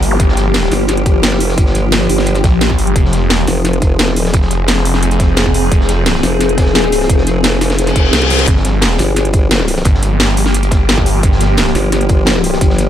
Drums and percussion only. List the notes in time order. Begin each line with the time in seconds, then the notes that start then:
0.03 closed hi-hat, open hi-hat
0.20 kick, closed hi-hat
0.29 snare
0.37 snare, closed hi-hat
0.54 snare, closed hi-hat
0.63 snare
0.72 snare, closed hi-hat, open hi-hat
0.88 snare, closed hi-hat
0.97 closed hi-hat
1.06 kick, closed hi-hat
1.23 snare, closed hi-hat
1.32 snare
1.40 closed hi-hat, open hi-hat
1.49 snare
1.58 kick, closed hi-hat
1.66 snare
1.75 closed hi-hat
1.92 snare, closed hi-hat
2.01 snare
2.09 closed hi-hat, open hi-hat
2.18 snare
2.26 closed hi-hat
2.34 snare, closed hi-hat
2.44 kick, snare, closed hi-hat
2.61 snare, closed hi-hat
2.70 kick, snare
2.78 closed hi-hat, open hi-hat
2.87 closed hi-hat
2.96 kick, closed hi-hat
3.05 snare
3.13 snare, closed hi-hat
3.30 snare, closed hi-hat
3.39 snare
3.47 snare, closed hi-hat, open hi-hat
3.65 snare, closed hi-hat
3.73 closed hi-hat
3.82 kick, closed hi-hat
3.99 snare, closed hi-hat
4.08 snare
4.16 closed hi-hat, open hi-hat
4.25 snare
4.33 kick, closed hi-hat
4.42 snare
4.51 closed hi-hat
4.68 snare, closed hi-hat
4.77 snare
4.85 closed hi-hat, open hi-hat
4.94 snare
5.03 closed hi-hat
5.11 closed hi-hat
5.20 kick, snare, closed hi-hat
5.37 snare, closed hi-hat
5.46 kick, snare
5.54 closed hi-hat, open hi-hat
5.72 kick, closed hi-hat
5.81 snare
5.89 snare, closed hi-hat
6.06 snare, closed hi-hat
6.15 snare
6.23 snare, closed hi-hat, open hi-hat
6.40 snare, closed hi-hat
6.49 closed hi-hat
6.58 kick, snare, closed hi-hat
6.66 snare
6.75 snare, closed hi-hat
6.84 snare
6.92 closed hi-hat, open hi-hat
7.01 snare
7.09 kick, closed hi-hat
7.18 snare
7.27 closed hi-hat
7.44 snare, closed hi-hat
7.52 snare
7.61 snare, closed hi-hat, open hi-hat
7.70 snare, closed hi-hat
7.78 snare, closed hi-hat
7.87 snare, closed hi-hat
7.96 kick, closed hi-hat
8.05 snare
8.13 snare, closed hi-hat
8.22 snare, closed hi-hat
8.30 snare, closed hi-hat, open hi-hat
8.39 snare, closed hi-hat
8.47 kick, closed hi-hat
8.56 snare
8.65 snare, closed hi-hat
8.82 snare, closed hi-hat
8.91 snare
8.98 snare, closed hi-hat, open hi-hat
9.16 snare, closed hi-hat
9.25 closed hi-hat
9.33 kick, closed hi-hat
9.51 snare, closed hi-hat
9.59 snare
9.68 closed hi-hat, open hi-hat
9.76 snare
9.85 kick, closed hi-hat
9.95 snare
10.02 closed hi-hat
10.20 snare, closed hi-hat
10.28 snare
10.37 closed hi-hat, open hi-hat
10.46 snare
10.54 closed hi-hat
10.63 closed hi-hat
10.71 kick, snare, closed hi-hat
10.89 snare, closed hi-hat
10.97 kick, snare
11.06 closed hi-hat, open hi-hat
11.23 kick, closed hi-hat
11.32 snare
11.41 snare, closed hi-hat
11.57 snare, closed hi-hat
11.67 snare
11.75 snare, closed hi-hat, open hi-hat
11.92 snare, closed hi-hat
12.01 closed hi-hat
12.09 kick, closed hi-hat
12.26 snare, closed hi-hat
12.35 snare
12.44 closed hi-hat, open hi-hat
12.53 snare
12.61 kick, closed hi-hat
12.70 snare
12.78 closed hi-hat